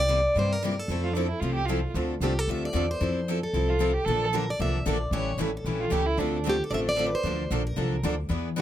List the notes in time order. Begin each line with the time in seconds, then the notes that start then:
Already playing: C2
0.00 D5
0.09 C3 G3 A#3 E4 G4
0.35 G2 C3 G3 A#3 E4 G4 C5
0.53 A#4
0.64 C3 G3 A#3 E4 G4 A#4
0.79 A4
0.88 F2 F3 A3 C4 E4 A4
1.03 F4
1.14 F3 A3 C4 D4 E4
1.18 A4
1.28 E4
1.40 C2 F3 A3 C4 E4 F4 A4
1.55 G4
1.65 F3 A3 C4 F4 A4
1.70 E4
1.94 D2 D3 F3 A3 C4 D4 F4 A4
2.20 C2 D3 F3 A3 C4 D4 F4 G4 A4
2.39 A4
2.48 D2 D3 F3 A3 C4 D4 F4 A4 E5
2.65 D5
2.73 E2 D3 F3 A3 C4 D4 F4 A4
2.91 C5
3.01 F2 F3 C4 E4 A4
3.28 F3 C4 E4 A4
3.43 A4
3.53 C2 F3 C4 E4 A4
3.68 F4
3.79 F3 C4 E4 A4
3.93 G4
4.05 A#1 D3 F3 A#3 D4 A4
4.34 D3 F3 A#3 D4 A4 A#4
4.50 D5
4.59 C2 D3 F3 A#3 D4 A4 E5
4.86 A#1 D3 F3 A#3 D4 A4 D5
5.11 A1 C#3 E3 G3 A3 C#4 E4 G4 A4 C#5
5.37 A1 C#3 E3 G3 A3 C#4 E4 G4 A4
5.57 A4
5.64 A#1 C#3 E3 G3 A3 C#4 E4 G4 A4
5.80 F4
5.90 C#2 C#3 E3 G3 A3 C#4 E4 G4 A4
6.06 E4
6.17 D2 D3 F3 A3 C4 D4 F4 A4
6.44 D3 F3 A3 C4 D4 F4 A4
6.49 G4
6.64 A4
6.71 A1 D3 F3 A3 C4 D4 F4 A4 D5 E5
6.89 D5
6.96 D3 F3 A3 C4 D4 F4 A4
7.07 B4
7.15 C5
7.24 D2 D3 F3 A#3 D4 A4
7.51 A#1 D3 F3 A#3 D4 A4
7.67 A#4
7.76 C2 D3 F3 A#3 D4 A4
8.03 D2 D3 F3 A#3 D4 A4
8.29 E2 E3 B3 D4 G#4 B4
8.56 E3 B3 D4 G#4 B4